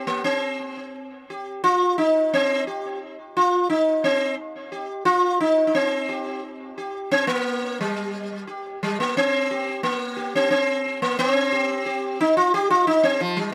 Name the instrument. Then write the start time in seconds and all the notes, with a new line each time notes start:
sitar
Already playing: G4
0.07 A#3
0.24 C4
1.30 G4
1.64 F4
1.98 D#4
2.34 C4
2.67 G4
3.37 F4
3.70 D#4
4.04 C4
4.72 G4
5.05 F4
5.40 D#4
5.67 D#4
5.75 C4
6.09 G4
6.78 G4
7.11 C4
7.27 A#3
7.81 G3
8.47 G4
8.83 G3
9.00 A#3
9.17 C4
9.51 G4
9.83 A#3
10.16 G4
10.35 C4
10.51 C4
11.02 A#3
11.19 B3
11.34 C4
11.52 G4
11.86 G4
12.21 D#4
12.37 F4
12.54 G4
12.70 F4
12.87 D#4
13.03 C4
13.21 F3
13.37 G3